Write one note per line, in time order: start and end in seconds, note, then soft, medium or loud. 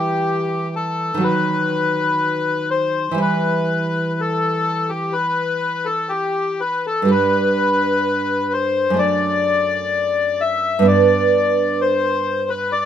0.00 1.14 E3 soft
0.00 1.16 G3 soft
0.00 1.18 E4 soft
0.00 0.75 G4 medium
0.76 1.24 A4 medium
1.14 3.11 D#3 soft
1.14 3.13 F#3 soft
1.21 3.15 F#4 soft
1.21 2.70 B4 medium
2.70 3.20 C5 medium
3.11 7.03 E3 soft
3.11 7.04 G3 soft
3.18 7.06 E4 soft
3.18 4.21 B4 medium
4.20 4.91 A4 medium
4.89 5.14 G4 medium
5.13 5.87 B4 medium
5.85 6.11 A4 medium
6.09 6.61 G4 medium
6.60 6.86 B4 medium
6.87 7.11 A4 medium
7.02 8.90 G2 soft
7.02 8.92 G3 soft
7.08 8.94 D4 soft
7.08 8.53 B4 medium
8.53 8.99 C5 medium
8.90 10.79 F#2 soft
8.90 10.82 A3 soft
8.97 10.83 D4 soft
8.97 10.41 D5 medium
10.41 10.87 E5 medium
10.79 12.85 G2 soft
10.79 12.85 B3 soft
10.85 12.85 D4 soft
10.85 11.81 D5 medium
11.81 12.50 C5 medium
12.50 12.72 B4 medium
12.72 12.85 D5 medium